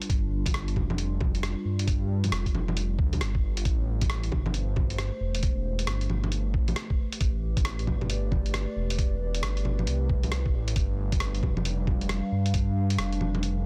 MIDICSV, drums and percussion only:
0, 0, Header, 1, 2, 480
1, 0, Start_track
1, 0, Key_signature, 0, "minor"
1, 0, Tempo, 444444
1, 104, Time_signature, 4, 2, 24, 8
1, 14752, End_track
2, 0, Start_track
2, 0, Title_t, "Drums"
2, 18, Note_on_c, 9, 42, 50
2, 103, Note_on_c, 9, 36, 113
2, 106, Note_off_c, 9, 42, 0
2, 106, Note_on_c, 9, 42, 52
2, 211, Note_off_c, 9, 36, 0
2, 214, Note_off_c, 9, 42, 0
2, 494, Note_on_c, 9, 36, 93
2, 500, Note_on_c, 9, 42, 54
2, 500, Note_on_c, 9, 61, 36
2, 585, Note_off_c, 9, 42, 0
2, 585, Note_on_c, 9, 37, 97
2, 585, Note_on_c, 9, 42, 54
2, 602, Note_off_c, 9, 36, 0
2, 608, Note_off_c, 9, 61, 0
2, 693, Note_off_c, 9, 37, 0
2, 693, Note_off_c, 9, 42, 0
2, 735, Note_on_c, 9, 42, 29
2, 823, Note_on_c, 9, 36, 54
2, 824, Note_on_c, 9, 61, 61
2, 843, Note_off_c, 9, 42, 0
2, 931, Note_off_c, 9, 36, 0
2, 932, Note_off_c, 9, 61, 0
2, 972, Note_on_c, 9, 61, 64
2, 1061, Note_on_c, 9, 42, 52
2, 1080, Note_off_c, 9, 61, 0
2, 1169, Note_off_c, 9, 42, 0
2, 1301, Note_on_c, 9, 61, 63
2, 1304, Note_on_c, 9, 36, 94
2, 1409, Note_off_c, 9, 61, 0
2, 1412, Note_off_c, 9, 36, 0
2, 1456, Note_on_c, 9, 42, 28
2, 1547, Note_off_c, 9, 42, 0
2, 1547, Note_on_c, 9, 37, 95
2, 1547, Note_on_c, 9, 42, 52
2, 1655, Note_off_c, 9, 37, 0
2, 1655, Note_off_c, 9, 42, 0
2, 1937, Note_on_c, 9, 42, 50
2, 2024, Note_on_c, 9, 36, 112
2, 2026, Note_off_c, 9, 42, 0
2, 2026, Note_on_c, 9, 42, 53
2, 2132, Note_off_c, 9, 36, 0
2, 2134, Note_off_c, 9, 42, 0
2, 2418, Note_on_c, 9, 42, 54
2, 2418, Note_on_c, 9, 61, 37
2, 2508, Note_off_c, 9, 42, 0
2, 2508, Note_on_c, 9, 37, 102
2, 2508, Note_on_c, 9, 42, 55
2, 2526, Note_off_c, 9, 61, 0
2, 2616, Note_off_c, 9, 37, 0
2, 2616, Note_off_c, 9, 42, 0
2, 2656, Note_on_c, 9, 36, 55
2, 2660, Note_on_c, 9, 42, 30
2, 2750, Note_on_c, 9, 61, 66
2, 2764, Note_off_c, 9, 36, 0
2, 2768, Note_off_c, 9, 42, 0
2, 2858, Note_off_c, 9, 61, 0
2, 2898, Note_on_c, 9, 61, 64
2, 2988, Note_on_c, 9, 42, 51
2, 3006, Note_off_c, 9, 61, 0
2, 3096, Note_off_c, 9, 42, 0
2, 3225, Note_on_c, 9, 36, 101
2, 3333, Note_off_c, 9, 36, 0
2, 3379, Note_on_c, 9, 42, 30
2, 3379, Note_on_c, 9, 61, 54
2, 3467, Note_off_c, 9, 42, 0
2, 3467, Note_on_c, 9, 37, 98
2, 3467, Note_on_c, 9, 42, 53
2, 3487, Note_off_c, 9, 61, 0
2, 3575, Note_off_c, 9, 37, 0
2, 3575, Note_off_c, 9, 42, 0
2, 3616, Note_on_c, 9, 36, 99
2, 3724, Note_off_c, 9, 36, 0
2, 3856, Note_on_c, 9, 42, 52
2, 3945, Note_off_c, 9, 42, 0
2, 3945, Note_on_c, 9, 36, 116
2, 3945, Note_on_c, 9, 42, 54
2, 4053, Note_off_c, 9, 36, 0
2, 4053, Note_off_c, 9, 42, 0
2, 4336, Note_on_c, 9, 42, 56
2, 4336, Note_on_c, 9, 61, 38
2, 4337, Note_on_c, 9, 36, 101
2, 4424, Note_off_c, 9, 42, 0
2, 4424, Note_on_c, 9, 37, 101
2, 4424, Note_on_c, 9, 42, 55
2, 4444, Note_off_c, 9, 61, 0
2, 4445, Note_off_c, 9, 36, 0
2, 4532, Note_off_c, 9, 37, 0
2, 4532, Note_off_c, 9, 42, 0
2, 4574, Note_on_c, 9, 42, 30
2, 4663, Note_on_c, 9, 61, 62
2, 4666, Note_on_c, 9, 36, 58
2, 4682, Note_off_c, 9, 42, 0
2, 4771, Note_off_c, 9, 61, 0
2, 4774, Note_off_c, 9, 36, 0
2, 4815, Note_on_c, 9, 61, 65
2, 4904, Note_on_c, 9, 42, 52
2, 4923, Note_off_c, 9, 61, 0
2, 5012, Note_off_c, 9, 42, 0
2, 5144, Note_on_c, 9, 61, 63
2, 5146, Note_on_c, 9, 36, 105
2, 5252, Note_off_c, 9, 61, 0
2, 5254, Note_off_c, 9, 36, 0
2, 5295, Note_on_c, 9, 42, 31
2, 5384, Note_off_c, 9, 42, 0
2, 5384, Note_on_c, 9, 37, 99
2, 5384, Note_on_c, 9, 42, 58
2, 5492, Note_off_c, 9, 37, 0
2, 5492, Note_off_c, 9, 42, 0
2, 5774, Note_on_c, 9, 42, 53
2, 5861, Note_off_c, 9, 42, 0
2, 5861, Note_on_c, 9, 42, 55
2, 5865, Note_on_c, 9, 36, 117
2, 5969, Note_off_c, 9, 42, 0
2, 5973, Note_off_c, 9, 36, 0
2, 6253, Note_on_c, 9, 42, 55
2, 6342, Note_off_c, 9, 42, 0
2, 6342, Note_on_c, 9, 37, 108
2, 6342, Note_on_c, 9, 42, 57
2, 6450, Note_off_c, 9, 37, 0
2, 6450, Note_off_c, 9, 42, 0
2, 6493, Note_on_c, 9, 42, 32
2, 6583, Note_on_c, 9, 61, 60
2, 6601, Note_off_c, 9, 42, 0
2, 6691, Note_off_c, 9, 61, 0
2, 6735, Note_on_c, 9, 61, 64
2, 6823, Note_on_c, 9, 42, 53
2, 6843, Note_off_c, 9, 61, 0
2, 6931, Note_off_c, 9, 42, 0
2, 7063, Note_on_c, 9, 36, 104
2, 7171, Note_off_c, 9, 36, 0
2, 7213, Note_on_c, 9, 42, 31
2, 7213, Note_on_c, 9, 61, 50
2, 7302, Note_off_c, 9, 42, 0
2, 7302, Note_on_c, 9, 37, 104
2, 7302, Note_on_c, 9, 42, 56
2, 7321, Note_off_c, 9, 61, 0
2, 7410, Note_off_c, 9, 37, 0
2, 7410, Note_off_c, 9, 42, 0
2, 7453, Note_on_c, 9, 36, 106
2, 7561, Note_off_c, 9, 36, 0
2, 7695, Note_on_c, 9, 42, 57
2, 7782, Note_off_c, 9, 42, 0
2, 7782, Note_on_c, 9, 42, 52
2, 7783, Note_on_c, 9, 36, 126
2, 7890, Note_off_c, 9, 42, 0
2, 7891, Note_off_c, 9, 36, 0
2, 8173, Note_on_c, 9, 36, 108
2, 8174, Note_on_c, 9, 42, 53
2, 8174, Note_on_c, 9, 61, 34
2, 8261, Note_off_c, 9, 42, 0
2, 8261, Note_on_c, 9, 37, 112
2, 8261, Note_on_c, 9, 42, 57
2, 8281, Note_off_c, 9, 36, 0
2, 8282, Note_off_c, 9, 61, 0
2, 8369, Note_off_c, 9, 37, 0
2, 8369, Note_off_c, 9, 42, 0
2, 8415, Note_on_c, 9, 42, 31
2, 8502, Note_on_c, 9, 36, 61
2, 8502, Note_on_c, 9, 61, 62
2, 8523, Note_off_c, 9, 42, 0
2, 8610, Note_off_c, 9, 36, 0
2, 8610, Note_off_c, 9, 61, 0
2, 8654, Note_on_c, 9, 61, 61
2, 8743, Note_on_c, 9, 42, 55
2, 8762, Note_off_c, 9, 61, 0
2, 8851, Note_off_c, 9, 42, 0
2, 8983, Note_on_c, 9, 36, 107
2, 8983, Note_on_c, 9, 61, 61
2, 9091, Note_off_c, 9, 36, 0
2, 9091, Note_off_c, 9, 61, 0
2, 9134, Note_on_c, 9, 42, 32
2, 9222, Note_off_c, 9, 42, 0
2, 9222, Note_on_c, 9, 37, 105
2, 9222, Note_on_c, 9, 42, 56
2, 9330, Note_off_c, 9, 37, 0
2, 9330, Note_off_c, 9, 42, 0
2, 9615, Note_on_c, 9, 42, 54
2, 9703, Note_on_c, 9, 36, 119
2, 9705, Note_off_c, 9, 42, 0
2, 9705, Note_on_c, 9, 42, 53
2, 9811, Note_off_c, 9, 36, 0
2, 9813, Note_off_c, 9, 42, 0
2, 10093, Note_on_c, 9, 42, 53
2, 10183, Note_off_c, 9, 42, 0
2, 10183, Note_on_c, 9, 37, 109
2, 10183, Note_on_c, 9, 42, 55
2, 10291, Note_off_c, 9, 37, 0
2, 10291, Note_off_c, 9, 42, 0
2, 10335, Note_on_c, 9, 42, 28
2, 10421, Note_on_c, 9, 61, 60
2, 10443, Note_off_c, 9, 42, 0
2, 10529, Note_off_c, 9, 61, 0
2, 10573, Note_on_c, 9, 61, 59
2, 10660, Note_on_c, 9, 42, 50
2, 10681, Note_off_c, 9, 61, 0
2, 10768, Note_off_c, 9, 42, 0
2, 10902, Note_on_c, 9, 36, 103
2, 11010, Note_off_c, 9, 36, 0
2, 11053, Note_on_c, 9, 42, 30
2, 11053, Note_on_c, 9, 61, 47
2, 11142, Note_off_c, 9, 42, 0
2, 11142, Note_on_c, 9, 37, 101
2, 11142, Note_on_c, 9, 42, 52
2, 11161, Note_off_c, 9, 61, 0
2, 11250, Note_off_c, 9, 37, 0
2, 11250, Note_off_c, 9, 42, 0
2, 11294, Note_on_c, 9, 36, 99
2, 11402, Note_off_c, 9, 36, 0
2, 11532, Note_on_c, 9, 42, 52
2, 11621, Note_off_c, 9, 42, 0
2, 11621, Note_on_c, 9, 42, 48
2, 11622, Note_on_c, 9, 36, 115
2, 11729, Note_off_c, 9, 42, 0
2, 11730, Note_off_c, 9, 36, 0
2, 12014, Note_on_c, 9, 36, 100
2, 12014, Note_on_c, 9, 42, 51
2, 12014, Note_on_c, 9, 61, 36
2, 12099, Note_off_c, 9, 42, 0
2, 12099, Note_on_c, 9, 37, 102
2, 12099, Note_on_c, 9, 42, 54
2, 12122, Note_off_c, 9, 36, 0
2, 12122, Note_off_c, 9, 61, 0
2, 12207, Note_off_c, 9, 37, 0
2, 12207, Note_off_c, 9, 42, 0
2, 12254, Note_on_c, 9, 42, 29
2, 12342, Note_on_c, 9, 36, 58
2, 12343, Note_on_c, 9, 61, 59
2, 12362, Note_off_c, 9, 42, 0
2, 12450, Note_off_c, 9, 36, 0
2, 12451, Note_off_c, 9, 61, 0
2, 12494, Note_on_c, 9, 61, 62
2, 12585, Note_on_c, 9, 42, 51
2, 12602, Note_off_c, 9, 61, 0
2, 12693, Note_off_c, 9, 42, 0
2, 12823, Note_on_c, 9, 36, 104
2, 12823, Note_on_c, 9, 61, 59
2, 12931, Note_off_c, 9, 36, 0
2, 12931, Note_off_c, 9, 61, 0
2, 12975, Note_on_c, 9, 42, 29
2, 13061, Note_off_c, 9, 42, 0
2, 13061, Note_on_c, 9, 37, 106
2, 13061, Note_on_c, 9, 42, 51
2, 13169, Note_off_c, 9, 37, 0
2, 13169, Note_off_c, 9, 42, 0
2, 13454, Note_on_c, 9, 42, 49
2, 13542, Note_off_c, 9, 42, 0
2, 13542, Note_on_c, 9, 42, 50
2, 13544, Note_on_c, 9, 36, 112
2, 13650, Note_off_c, 9, 42, 0
2, 13652, Note_off_c, 9, 36, 0
2, 13935, Note_on_c, 9, 42, 51
2, 14024, Note_off_c, 9, 42, 0
2, 14024, Note_on_c, 9, 37, 104
2, 14024, Note_on_c, 9, 42, 52
2, 14132, Note_off_c, 9, 37, 0
2, 14132, Note_off_c, 9, 42, 0
2, 14175, Note_on_c, 9, 42, 28
2, 14264, Note_on_c, 9, 61, 62
2, 14283, Note_off_c, 9, 42, 0
2, 14372, Note_off_c, 9, 61, 0
2, 14414, Note_on_c, 9, 61, 65
2, 14503, Note_on_c, 9, 42, 51
2, 14522, Note_off_c, 9, 61, 0
2, 14611, Note_off_c, 9, 42, 0
2, 14752, End_track
0, 0, End_of_file